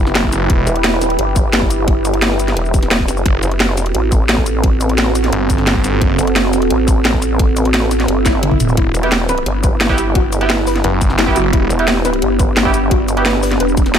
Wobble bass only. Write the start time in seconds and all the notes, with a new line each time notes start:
0.67 E1
1.19 G1
2.57 E1
3.08 F#1
3.43 F#1
3.95 A1
6.19 F#1
6.70 A1
8.08 G1
8.95 E1
9.46 G1
11.70 E1
12.22 G1
13.60 E1